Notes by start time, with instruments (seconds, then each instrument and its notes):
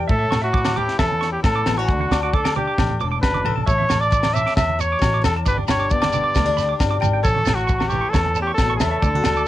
0.08 steel-string acoustic guitar A2 C#4, upright bass A2, trumpet A4, clean electric guitar E5, kick
0.19 clean electric guitar E5
0.31 upright bass A2, steel-string acoustic guitar E4, clean electric guitar C#6, snare, high conga, low conga, low agogo
0.42 trumpet F#4, clean electric guitar E5
0.53 steel-string acoustic guitar A3, clean electric guitar D6, kick
0.65 clean electric guitar D6, snare, high conga, low agogo
0.76 steel-string acoustic guitar E3 E4, trumpet G4, clean electric guitar D6, low conga
0.88 snare
0.99 upright bass E2, steel-string acoustic guitar C#4, trumpet A4, clean electric guitar E5, kick, snare, low conga, low agogo
1.11 high conga
1.21 steel-string acoustic guitar E2 E4, clean electric guitar C#6, snare
1.32 trumpet G4
1.43 upright bass A2, trumpet A4, kick, snare, low agogo
1.56 clean electric guitar D6
1.66 upright bass A1, steel-string acoustic guitar B3, clean electric guitar A5, snare, high conga, low agogo
1.78 steel-string acoustic guitar C#4, trumpet F#4, clean electric guitar C#6
1.89 upright bass D2, steel-string acoustic guitar D3 D4, muted clean electric guitar stroke, kick
2.00 clean electric guitar F#5, high conga
2.11 upright bass D2, steel-string acoustic guitar D4, clean electric guitar D6, snare, high conga, low conga, low agogo
2.23 trumpet F#4, clean electric guitar D6
2.34 steel-string acoustic guitar D4, trumpet A4, clean electric guitar D6, kick
2.45 clean electric guitar D6, snare, high conga, low agogo
2.56 steel-string acoustic guitar D4, trumpet G4, clean electric guitar D6, muted steel-string acoustic guitar stroke, low conga
2.68 clean electric guitar D6
2.78 upright bass A1, steel-string acoustic guitar D4, muted clean electric guitar stroke, kick, snare, low conga, low agogo
2.90 high conga
3.00 upright bass E1, steel-string acoustic guitar A2 A4, clean electric guitar D6
3.12 clean electric guitar D6
3.22 upright bass F#1, trumpet B4, kick, snare, high conga, low agogo
3.34 clean electric guitar D6, high conga
3.45 upright bass A1, steel-string acoustic guitar A4, clean electric guitar A5, low conga, low agogo
3.56 clean electric guitar A5, low conga
3.66 upright bass A1, steel-string acoustic guitar A2 A4, trumpet C#5, clean electric guitar E5, kick, shekere
3.78 clean electric guitar E5, high conga
3.89 upright bass A1, steel-string acoustic guitar A4, clean electric guitar C#6, snare, high conga, low conga, low agogo, shekere
4.00 trumpet D5, clean electric guitar D6, shekere
4.10 steel-string acoustic guitar E4, clean electric guitar D6, kick, shekere
4.23 clean electric guitar D6, snare, high conga, low agogo
4.33 steel-string acoustic guitar C#4 A4, trumpet E5, clean electric guitar D6, low conga, shekere
4.46 clean electric guitar D6, snare
4.56 upright bass E2, steel-string acoustic guitar A4, trumpet E5, clean electric guitar E5, kick, snare, low conga, low agogo, shekere
4.69 high conga
4.79 steel-string acoustic guitar A2, trumpet C#5, clean electric guitar C#6, shekere
4.92 clean electric guitar D6
4.99 upright bass A1, steel-string acoustic guitar B2, kick, snare, low agogo, shekere
5.14 clean electric guitar D6
5.21 upright bass E2, steel-string acoustic guitar A2, trumpet A4, snare, high conga, low conga, low agogo, shekere
5.36 clean electric guitar A5
5.45 upright bass G1, steel-string acoustic guitar G2 D4, trumpet B4, clean electric guitar D5, kick, shekere
5.57 clean electric guitar D5, high conga
5.68 upright bass G1, steel-string acoustic guitar G4, trumpet C#5, clean electric guitar B5, snare, high conga, low conga, low agogo, shekere
5.79 clean electric guitar D6, shekere
5.90 steel-string acoustic guitar B3, trumpet D5, kick, shekere
6.02 clean electric guitar D6, snare, high conga, low agogo
6.12 steel-string acoustic guitar D3 G4, clean electric guitar D6, low conga, shekere
6.23 clean electric guitar D6
6.34 upright bass D2, steel-string acoustic guitar B3, clean electric guitar D5, kick, snare, low conga, low agogo, shekere
6.45 steel-string acoustic guitar D4, high conga
6.56 steel-string acoustic guitar D3 G4, clean electric guitar B5, snare, shekere
6.69 clean electric guitar D6
6.79 upright bass G1, steel-string acoustic guitar F#2, kick, snare, low agogo, shekere
6.90 clean electric guitar D6
7.00 upright bass G#1, steel-string acoustic guitar G2, clean electric guitar G5, high conga, low conga, low agogo, shekere
7.13 clean electric guitar G5
7.23 upright bass A1, steel-string acoustic guitar A2 C#4, trumpet A4, clean electric guitar C#5, kick, shekere
7.35 clean electric guitar C#5, high conga
7.45 upright bass A1, steel-string acoustic guitar E4, clean electric guitar A5, snare, high conga, low conga, low agogo, shekere
7.55 trumpet F#4, clean electric guitar C#6, shekere
7.67 steel-string acoustic guitar A3, clean electric guitar C#6, kick, shekere
7.78 clean electric guitar C#6, snare, high conga, low agogo
7.89 steel-string acoustic guitar E3, trumpet G4, clean electric guitar C#6, low conga, shekere
7.93 steel-string acoustic guitar E4
8.01 clean electric guitar C#6
8.10 trumpet A4, clean electric guitar C#5, shekere
8.14 upright bass E2, steel-string acoustic guitar C#4, kick, snare, low conga, low agogo
8.26 high conga
8.35 steel-string acoustic guitar E2 E4, clean electric guitar A5, shekere
8.42 trumpet G4
8.47 clean electric guitar C#6
8.54 trumpet A4, snare, shekere
8.58 upright bass A1, steel-string acoustic guitar B2, kick, low agogo
8.70 clean electric guitar C#6
8.77 trumpet A4, clean electric guitar E5, snare, shekere
8.81 upright bass E2, steel-string acoustic guitar C#3, high conga, low conga, low agogo
8.91 clean electric guitar E5
9.02 upright bass D2, steel-string acoustic guitar D3 E4, clean electric guitar D5, kick, shekere
9.15 steel-string acoustic guitar F#4, high conga
9.24 upright bass D2, steel-string acoustic guitar F#4, muted clean electric guitar stroke, snare, high conga, low conga, low agogo, shekere
9.36 clean electric guitar D6, shekere